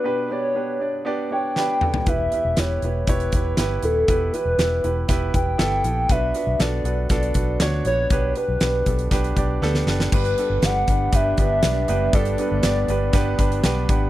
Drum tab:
CC |----------------|----------------|----------------|----------------|
HH |----------------|x-x-x-x-xxx-x-x-|x-x-x-x-x-x-x-x-|x-x-x-x-xxx-x-x-|
SD |------------o---|----o-------o---|----o---o---o---|----o---o---o---|
T2 |--------------o-|----------------|----------------|----------------|
FT |---------------o|----------------|----------------|----------------|
BD |----------------|o-------o-o-----|o-------o-o-----|o-------o-o-----|

CC |----------------|x---------------|----------------|
HH |x-x-x-xxxxx-----|-xx-x-x-x-x-x-x-|xxx-x-x-x-xxx-x-|
SD |----o---o---oooo|----o-------o---|----o---o---o---|
T2 |----------------|----------------|----------------|
FT |----------------|----------------|----------------|
BD |o-----o-o-o-----|o-----o-o-o-----|o-------o-o---o-|